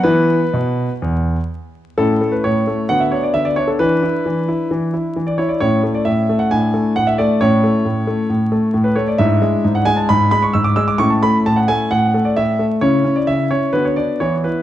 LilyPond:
<<
  \new Staff \with { instrumentName = "Grand piano" } { \time 4/4 \key a \major \tempo 4 = 132 << { b'2. r4 | a'8. b'16 cis''4 fis''16 e''16 cis''16 d''16 e''16 d''16 cis''16 a'16 | b'2.~ b'16 d''16 cis''16 d''16 | cis''8. d''16 e''8. fis''16 gis''4 fis''16 e''16 d''8 |
cis''2.~ cis''16 b'16 cis''16 d''16 | e''4~ e''16 fis''16 gis''16 a''16 b''8 b''16 cis'''16 e'''16 d'''16 e'''16 d'''16 | cis'''16 a''16 b''8 a''16 fis''16 gis''8 fis''8. d''16 e''4 | cis''8. d''16 e''8 cis''8 b'16 cis''16 d''8 cis''8 b'8 | } \\ { r1 | <cis' e'>2 <b fis'>2 | <d' e'>1 | <cis' e'>2 <d' e'>2 |
<cis' e'>1 | <d' e'>1 | <cis' e'>1 | <cis' e'>2 <b fis'>4 <b e'>4 | } >> }
  \new Staff \with { instrumentName = "Grand piano" } { \clef bass \time 4/4 \key a \major <e b e'>4 b,4 e,4 r4 | a,8 a8 a,8 a8 d8 d'8 d8 d'8 | e8 e'8 e8 e'8 e8 e'8 e8 e'8 | a,8 a8 a,8 a8 a,8 a8 a,8 a8 |
a,8 a8 a,8 a8 a,8 a8 a,8 a8 | gis,8 gis8 gis,8 gis8 gis,8 gis8 gis,8 gis8 | a,8 a8 a,8 a8 a,8 a8 a,8 a8 | cis8 cis'8 cis8 cis'8 d8 d'8 e8 e'8 | }
>>